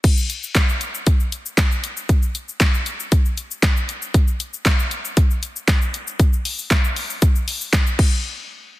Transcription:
0.04 kick, closed hi-hat, crash, shaker
0.17 shaker
0.30 closed hi-hat, shaker
0.43 shaker
0.55 kick, snare, clap, closed hi-hat, shaker
0.69 shaker
0.81 closed hi-hat, shaker
0.95 shaker
1.07 kick, closed hi-hat, shaker
1.20 shaker
1.32 closed hi-hat, shaker
1.46 shaker
1.58 kick, snare, clap, closed hi-hat, shaker
1.71 shaker
1.84 closed hi-hat, shaker
1.97 shaker
2.09 kick, closed hi-hat, shaker
2.23 shaker
2.35 closed hi-hat, shaker
2.48 shaker
2.60 kick, snare, clap, closed hi-hat, shaker
2.74 shaker
2.86 closed hi-hat, shaker
3.00 shaker
3.12 kick, closed hi-hat, shaker
3.25 shaker
3.38 closed hi-hat, shaker
3.51 shaker
3.63 kick, snare, clap, closed hi-hat, shaker
3.77 shaker
3.89 closed hi-hat, shaker
4.02 shaker
4.14 kick, closed hi-hat, shaker
4.28 shaker
4.40 closed hi-hat, shaker
4.54 shaker
4.66 kick, snare, clap, closed hi-hat, shaker
4.79 shaker
4.91 closed hi-hat, shaker
5.05 shaker
5.17 kick, closed hi-hat, shaker
5.30 shaker
5.43 closed hi-hat, shaker
5.56 shaker
5.68 kick, snare, clap, closed hi-hat, shaker
5.82 shaker
5.94 closed hi-hat, shaker
6.07 shaker
6.20 kick, closed hi-hat, shaker
6.33 shaker
6.45 open hi-hat, shaker
6.59 shaker
6.71 kick, snare, clap, closed hi-hat, shaker
6.84 shaker
6.96 open hi-hat, shaker
7.10 shaker
7.22 kick, closed hi-hat, shaker
7.36 shaker
7.48 open hi-hat, shaker
7.61 shaker
7.73 kick, snare, clap, closed hi-hat, shaker
7.87 shaker
7.99 kick, crash

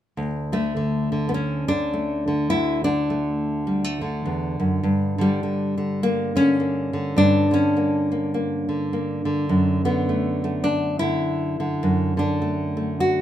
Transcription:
0.17 D2
0.52 D3 A3
0.77 D3
1.12 D3
1.29 B3
1.34 C#4
1.68 D3 D4
1.93 A3
2.28 D3
2.50 D2 E4
2.84 D3 D4
3.10 A3
3.67 G3
3.84 A3
4.01 D3
4.25 E2
4.60 F#2
4.83 G2
5.18 D3 G3
5.43 D3
5.78 D3
6.03 A#3
6.36 D3 C#4
6.60 A#3
6.93 D3
7.16 G2 D4
7.51 D3 C#4
7.77 A#3
8.12 A#3
8.34 A#3
8.69 D3
8.93 A#3
9.25 D3
9.49 F#2
9.85 D3 B3
10.09 A3
10.44 A3
10.64 D4
10.99 D3 E4
11.60 D3
11.83 F#2
12.17 D3 D4
12.42 A3
12.77 A3
13.00 F#4

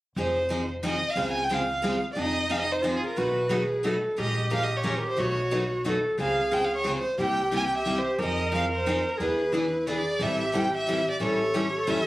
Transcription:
0.16 F1 F3 C4 D#4 G#4 C5
0.49 F3 C4 D#4 G#4
0.83 F3 C4 D#4 G#4 D#5
1.10 F5
1.15 C#2 C#3 G#3 C4 F4 G#4
1.32 G#5
1.44 G5
1.49 C#3 G#3 C4 F4 G#4
1.53 F5
1.82 C#3 G#3 C4 F4 G#4
2.13 F1 F3 C4 D#4 G#4 D5
2.18 D#5
2.50 F3 C4 D#4 G#4 F5
2.61 D#5
2.72 C5
2.82 F3 C4 D#4 F4 G#4
2.95 G#4
3.07 A#4
3.16 B1 B2 F#3 A3 D#4 F#4 B4
3.50 B2 F#3 A3 D#4 F#4 G#4 B4
3.83 B2 F#3 A3 D#4 F#4 A4 B4
4.16 A#1 F3 G#3 C#4 F4 G4 A#4 D#5
4.50 F3 G#3 C#4 F4 A#4 F5
4.64 D#5
4.76 C#5
4.83 F3 G#3 C#4 F4 A#4
4.99 A#4
5.09 C5
5.16 B1 B2 F#3 A3 D#4 F#4 B4 C#5
5.51 B2 F#3 A3 D#4 F#4 B4
5.85 B2 F#3 A3 D#4 F#4 A4 B4
6.18 C#2 C#3 G#3 C4 F4 G#4 F5
6.52 C#3 G#3 C4 F4 G#4 G5
6.64 F5
6.76 C#5
6.87 C#3 G#3 C4 F4 G#4
6.98 C5
7.18 C2 C3 G3 A#3 E4 G4 G5
7.52 C3 G3 A#3 E4 G4 G#5
7.67 G5
7.77 E5
7.87 C3 G3 A#3 E4 G4
7.99 C5
8.19 F2 F3 D#4 A#4 D#5
8.23 C4 G#4
8.54 F3 C4 D#4 G#4 F5
8.76 C5
8.87 F3 C4 D#4 G#4
9.10 A#4
9.18 E2 E3 B3 D4 G#4 B4
9.23 B4
9.53 E3 B3 D4 E4 G#4 B4
9.87 E3 B3 D4 G#4 A4 B4 D5
9.91 G#4
10.19 A1 E3 G3 C4 E4 G4 A4 E5
10.52 E3 G3 C4 E4 A4
10.57 G5
10.78 E5
10.87 E3 G3 C4 E4 A4
11.11 D5
11.20 A1 E3 G3 C#4 E4 A4 A#4 C#5
11.25 A4
11.54 E3 G3 C#4 E4 G4 A4
11.75 A4
11.87 E3 G3 C#4 E4 A4 E5

